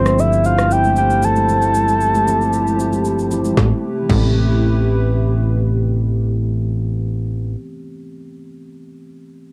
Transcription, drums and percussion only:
0, 0, Header, 1, 2, 480
1, 0, Start_track
1, 0, Key_signature, 0, "minor"
1, 0, Tempo, 521739
1, 1367, Time_signature, 4, 2, 24, 8
1, 8763, End_track
2, 0, Start_track
2, 0, Title_t, "Drums"
2, 52, Note_on_c, 9, 63, 73
2, 55, Note_on_c, 9, 37, 87
2, 55, Note_on_c, 9, 82, 53
2, 144, Note_off_c, 9, 63, 0
2, 147, Note_off_c, 9, 37, 0
2, 147, Note_off_c, 9, 82, 0
2, 167, Note_on_c, 9, 64, 60
2, 174, Note_on_c, 9, 82, 88
2, 259, Note_off_c, 9, 64, 0
2, 266, Note_off_c, 9, 82, 0
2, 300, Note_on_c, 9, 82, 54
2, 392, Note_off_c, 9, 82, 0
2, 409, Note_on_c, 9, 82, 65
2, 501, Note_off_c, 9, 82, 0
2, 531, Note_on_c, 9, 63, 71
2, 539, Note_on_c, 9, 37, 90
2, 541, Note_on_c, 9, 82, 57
2, 623, Note_off_c, 9, 63, 0
2, 631, Note_off_c, 9, 37, 0
2, 633, Note_off_c, 9, 82, 0
2, 654, Note_on_c, 9, 82, 91
2, 746, Note_off_c, 9, 82, 0
2, 773, Note_on_c, 9, 63, 71
2, 775, Note_on_c, 9, 82, 51
2, 865, Note_off_c, 9, 63, 0
2, 867, Note_off_c, 9, 82, 0
2, 886, Note_on_c, 9, 82, 61
2, 978, Note_off_c, 9, 82, 0
2, 1014, Note_on_c, 9, 82, 43
2, 1106, Note_off_c, 9, 82, 0
2, 1128, Note_on_c, 9, 64, 69
2, 1128, Note_on_c, 9, 82, 79
2, 1220, Note_off_c, 9, 64, 0
2, 1220, Note_off_c, 9, 82, 0
2, 1249, Note_on_c, 9, 82, 50
2, 1251, Note_on_c, 9, 63, 77
2, 1341, Note_off_c, 9, 82, 0
2, 1343, Note_off_c, 9, 63, 0
2, 1366, Note_on_c, 9, 64, 68
2, 1369, Note_on_c, 9, 82, 64
2, 1458, Note_off_c, 9, 64, 0
2, 1461, Note_off_c, 9, 82, 0
2, 1490, Note_on_c, 9, 82, 53
2, 1582, Note_off_c, 9, 82, 0
2, 1606, Note_on_c, 9, 82, 84
2, 1609, Note_on_c, 9, 63, 68
2, 1698, Note_off_c, 9, 82, 0
2, 1701, Note_off_c, 9, 63, 0
2, 1732, Note_on_c, 9, 82, 48
2, 1734, Note_on_c, 9, 63, 53
2, 1824, Note_off_c, 9, 82, 0
2, 1826, Note_off_c, 9, 63, 0
2, 1847, Note_on_c, 9, 82, 77
2, 1939, Note_off_c, 9, 82, 0
2, 1974, Note_on_c, 9, 63, 73
2, 1976, Note_on_c, 9, 82, 54
2, 2066, Note_off_c, 9, 63, 0
2, 2068, Note_off_c, 9, 82, 0
2, 2088, Note_on_c, 9, 64, 61
2, 2096, Note_on_c, 9, 82, 90
2, 2180, Note_off_c, 9, 64, 0
2, 2188, Note_off_c, 9, 82, 0
2, 2222, Note_on_c, 9, 82, 49
2, 2314, Note_off_c, 9, 82, 0
2, 2328, Note_on_c, 9, 82, 61
2, 2420, Note_off_c, 9, 82, 0
2, 2453, Note_on_c, 9, 63, 67
2, 2460, Note_on_c, 9, 82, 56
2, 2545, Note_off_c, 9, 63, 0
2, 2552, Note_off_c, 9, 82, 0
2, 2572, Note_on_c, 9, 82, 88
2, 2664, Note_off_c, 9, 82, 0
2, 2693, Note_on_c, 9, 63, 73
2, 2693, Note_on_c, 9, 82, 47
2, 2785, Note_off_c, 9, 63, 0
2, 2785, Note_off_c, 9, 82, 0
2, 2805, Note_on_c, 9, 82, 60
2, 2897, Note_off_c, 9, 82, 0
2, 2933, Note_on_c, 9, 82, 40
2, 3025, Note_off_c, 9, 82, 0
2, 3047, Note_on_c, 9, 82, 81
2, 3048, Note_on_c, 9, 64, 67
2, 3139, Note_off_c, 9, 82, 0
2, 3140, Note_off_c, 9, 64, 0
2, 3170, Note_on_c, 9, 82, 52
2, 3173, Note_on_c, 9, 63, 71
2, 3262, Note_off_c, 9, 82, 0
2, 3265, Note_off_c, 9, 63, 0
2, 3286, Note_on_c, 9, 63, 78
2, 3287, Note_on_c, 9, 36, 95
2, 3287, Note_on_c, 9, 38, 81
2, 3378, Note_off_c, 9, 63, 0
2, 3379, Note_off_c, 9, 36, 0
2, 3379, Note_off_c, 9, 38, 0
2, 3767, Note_on_c, 9, 36, 100
2, 3767, Note_on_c, 9, 63, 78
2, 3768, Note_on_c, 9, 49, 81
2, 3859, Note_off_c, 9, 36, 0
2, 3859, Note_off_c, 9, 63, 0
2, 3860, Note_off_c, 9, 49, 0
2, 8763, End_track
0, 0, End_of_file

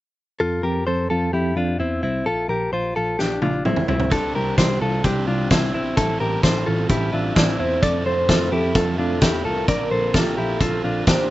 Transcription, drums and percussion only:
0, 0, Header, 1, 2, 480
1, 0, Start_track
1, 0, Key_signature, -1, "major"
1, 0, Tempo, 464037
1, 415, Time_signature, 4, 2, 24, 8
1, 11691, End_track
2, 0, Start_track
2, 0, Title_t, "Drums"
2, 3300, Note_on_c, 9, 38, 48
2, 3403, Note_off_c, 9, 38, 0
2, 3536, Note_on_c, 9, 48, 60
2, 3639, Note_off_c, 9, 48, 0
2, 3777, Note_on_c, 9, 47, 75
2, 3881, Note_off_c, 9, 47, 0
2, 3894, Note_on_c, 9, 45, 63
2, 3998, Note_off_c, 9, 45, 0
2, 4017, Note_on_c, 9, 43, 83
2, 4121, Note_off_c, 9, 43, 0
2, 4134, Note_on_c, 9, 43, 80
2, 4237, Note_off_c, 9, 43, 0
2, 4253, Note_on_c, 9, 42, 67
2, 4257, Note_on_c, 9, 36, 93
2, 4357, Note_off_c, 9, 42, 0
2, 4361, Note_off_c, 9, 36, 0
2, 4736, Note_on_c, 9, 36, 81
2, 4736, Note_on_c, 9, 42, 60
2, 4738, Note_on_c, 9, 38, 82
2, 4839, Note_off_c, 9, 36, 0
2, 4840, Note_off_c, 9, 42, 0
2, 4841, Note_off_c, 9, 38, 0
2, 5215, Note_on_c, 9, 42, 59
2, 5216, Note_on_c, 9, 36, 85
2, 5318, Note_off_c, 9, 42, 0
2, 5319, Note_off_c, 9, 36, 0
2, 5693, Note_on_c, 9, 42, 66
2, 5698, Note_on_c, 9, 36, 97
2, 5702, Note_on_c, 9, 38, 103
2, 5797, Note_off_c, 9, 42, 0
2, 5802, Note_off_c, 9, 36, 0
2, 5805, Note_off_c, 9, 38, 0
2, 6178, Note_on_c, 9, 36, 93
2, 6178, Note_on_c, 9, 42, 67
2, 6282, Note_off_c, 9, 36, 0
2, 6282, Note_off_c, 9, 42, 0
2, 6655, Note_on_c, 9, 36, 85
2, 6656, Note_on_c, 9, 42, 59
2, 6657, Note_on_c, 9, 38, 87
2, 6758, Note_off_c, 9, 36, 0
2, 6759, Note_off_c, 9, 42, 0
2, 6761, Note_off_c, 9, 38, 0
2, 7131, Note_on_c, 9, 42, 61
2, 7133, Note_on_c, 9, 36, 90
2, 7234, Note_off_c, 9, 42, 0
2, 7236, Note_off_c, 9, 36, 0
2, 7614, Note_on_c, 9, 42, 67
2, 7617, Note_on_c, 9, 36, 93
2, 7623, Note_on_c, 9, 38, 105
2, 7717, Note_off_c, 9, 42, 0
2, 7720, Note_off_c, 9, 36, 0
2, 7726, Note_off_c, 9, 38, 0
2, 8096, Note_on_c, 9, 36, 90
2, 8097, Note_on_c, 9, 42, 64
2, 8199, Note_off_c, 9, 36, 0
2, 8201, Note_off_c, 9, 42, 0
2, 8574, Note_on_c, 9, 36, 87
2, 8577, Note_on_c, 9, 42, 61
2, 8579, Note_on_c, 9, 38, 88
2, 8678, Note_off_c, 9, 36, 0
2, 8680, Note_off_c, 9, 42, 0
2, 8682, Note_off_c, 9, 38, 0
2, 9053, Note_on_c, 9, 36, 94
2, 9054, Note_on_c, 9, 42, 57
2, 9156, Note_off_c, 9, 36, 0
2, 9157, Note_off_c, 9, 42, 0
2, 9530, Note_on_c, 9, 42, 65
2, 9536, Note_on_c, 9, 36, 97
2, 9539, Note_on_c, 9, 38, 98
2, 9633, Note_off_c, 9, 42, 0
2, 9639, Note_off_c, 9, 36, 0
2, 9642, Note_off_c, 9, 38, 0
2, 10015, Note_on_c, 9, 36, 96
2, 10015, Note_on_c, 9, 42, 65
2, 10118, Note_off_c, 9, 36, 0
2, 10118, Note_off_c, 9, 42, 0
2, 10491, Note_on_c, 9, 36, 90
2, 10493, Note_on_c, 9, 42, 61
2, 10495, Note_on_c, 9, 38, 82
2, 10595, Note_off_c, 9, 36, 0
2, 10597, Note_off_c, 9, 42, 0
2, 10598, Note_off_c, 9, 38, 0
2, 10969, Note_on_c, 9, 42, 60
2, 10970, Note_on_c, 9, 36, 81
2, 11073, Note_off_c, 9, 42, 0
2, 11074, Note_off_c, 9, 36, 0
2, 11449, Note_on_c, 9, 42, 69
2, 11454, Note_on_c, 9, 36, 96
2, 11457, Note_on_c, 9, 38, 102
2, 11552, Note_off_c, 9, 42, 0
2, 11557, Note_off_c, 9, 36, 0
2, 11561, Note_off_c, 9, 38, 0
2, 11691, End_track
0, 0, End_of_file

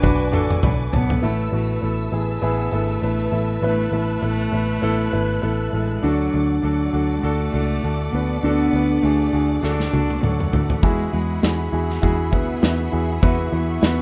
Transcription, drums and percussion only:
0, 0, Header, 1, 2, 480
1, 0, Start_track
1, 0, Tempo, 600060
1, 985, Time_signature, 4, 2, 24, 8
1, 11213, End_track
2, 0, Start_track
2, 0, Title_t, "Drums"
2, 27, Note_on_c, 9, 45, 66
2, 28, Note_on_c, 9, 36, 71
2, 107, Note_off_c, 9, 45, 0
2, 108, Note_off_c, 9, 36, 0
2, 267, Note_on_c, 9, 45, 73
2, 347, Note_off_c, 9, 45, 0
2, 403, Note_on_c, 9, 45, 73
2, 483, Note_off_c, 9, 45, 0
2, 504, Note_on_c, 9, 43, 92
2, 584, Note_off_c, 9, 43, 0
2, 746, Note_on_c, 9, 43, 88
2, 826, Note_off_c, 9, 43, 0
2, 881, Note_on_c, 9, 43, 85
2, 961, Note_off_c, 9, 43, 0
2, 7707, Note_on_c, 9, 38, 43
2, 7787, Note_off_c, 9, 38, 0
2, 7839, Note_on_c, 9, 38, 49
2, 7919, Note_off_c, 9, 38, 0
2, 7947, Note_on_c, 9, 48, 55
2, 8027, Note_off_c, 9, 48, 0
2, 8082, Note_on_c, 9, 48, 53
2, 8162, Note_off_c, 9, 48, 0
2, 8187, Note_on_c, 9, 47, 68
2, 8267, Note_off_c, 9, 47, 0
2, 8320, Note_on_c, 9, 45, 58
2, 8400, Note_off_c, 9, 45, 0
2, 8425, Note_on_c, 9, 43, 73
2, 8505, Note_off_c, 9, 43, 0
2, 8558, Note_on_c, 9, 43, 72
2, 8638, Note_off_c, 9, 43, 0
2, 8664, Note_on_c, 9, 36, 98
2, 8744, Note_off_c, 9, 36, 0
2, 9145, Note_on_c, 9, 38, 94
2, 9225, Note_off_c, 9, 38, 0
2, 9519, Note_on_c, 9, 38, 28
2, 9599, Note_off_c, 9, 38, 0
2, 9624, Note_on_c, 9, 36, 67
2, 9704, Note_off_c, 9, 36, 0
2, 9861, Note_on_c, 9, 36, 66
2, 9941, Note_off_c, 9, 36, 0
2, 10103, Note_on_c, 9, 38, 91
2, 10183, Note_off_c, 9, 38, 0
2, 10582, Note_on_c, 9, 36, 104
2, 10662, Note_off_c, 9, 36, 0
2, 11061, Note_on_c, 9, 38, 102
2, 11141, Note_off_c, 9, 38, 0
2, 11213, End_track
0, 0, End_of_file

